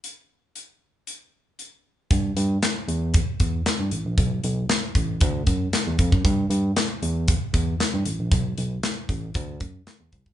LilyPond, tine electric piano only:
\new Staff \with { instrumentName = "Tine electric piano" } { \clef bass \time 4/4 \key d \major \tempo 4 = 116 r1 | g,8 g,8 r8 e,8. r16 e,8 r16 g,16 a,,16 bes,,16 | b,,8 b,,8 r8 a,,8 d,8 fis,8 r16 e,16 f,16 fis,16 | g,8 g,8 r8 e,8. r16 e,8 r16 g,16 a,,16 bes,,16 |
b,,8 b,,8 r8 a,,8 d,8 fis,8 r16 e,16 c,16 r16 | }